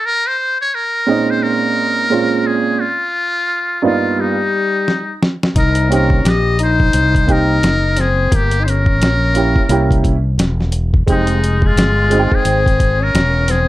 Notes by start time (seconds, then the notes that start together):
0.06 A#4
0.27 C5
0.61 C#5
0.75 A#4
1.07 A#2 G#3 C4 C#4 D#4
1.30 C5
1.43 A#4
2.10 A#2 G#3 C4 C#4 F4
2.47 G#4
2.81 F4
3.82 G2 A#3 B3 D#4 F4
4.18 G3 D#4
4.88 snare
5.23 snare
5.43 snare
5.56 C2 D#4 A#4, kick, closed hi-hat
5.75 closed hi-hat
5.89 A#3 C4 C#4 D#4 G4, closed hi-hat
5.94 A#4
6.10 kick
6.25 A#1 G4, snare, closed hi-hat
6.29 D#5
6.59 D#4, closed hi-hat
6.63 C5
6.80 kick
6.93 C2, closed hi-hat
7.15 kick, closed hi-hat
7.27 A#3 C4 D#4 G4, kick, closed hi-hat
7.32 A#4
7.63 F#1, snare, closed hi-hat
7.97 C4, snare, closed hi-hat
8.01 G#4
8.32 G1 A#3 G4, kick, closed hi-hat
8.51 closed hi-hat
8.61 D#4 C5
8.67 C#4 A#4, closed hi-hat
8.86 kick
9.01 A#1, snare, closed hi-hat
9.34 A#3 C#4 E4 G4, closed hi-hat
9.55 muted fretless electric bass stroke, kick
9.69 C2 A#3 C#4 E4 G4, closed hi-hat
9.91 kick, closed hi-hat
10.04 kick, closed hi-hat
10.38 E1, snare, closed hi-hat
10.61 snare
10.72 closed hi-hat
10.94 kick
11.06 F1 G#3 C4 D#4 G4, kick, closed hi-hat
11.11 D#4
11.27 closed hi-hat
11.44 closed hi-hat
11.62 G#3, kick
11.66 F4
11.76 G1, snare, closed hi-hat
12.10 G#3 C4 D#4 F#4, closed hi-hat
12.20 G5
12.31 C4 G#4, muted fretless electric bass stroke, kick
12.45 G#1, closed hi-hat
12.66 kick, closed hi-hat
12.80 kick, closed hi-hat
13.01 C#4 A#4
13.14 E1, snare, closed hi-hat
13.48 C4 G#4, snare, closed hi-hat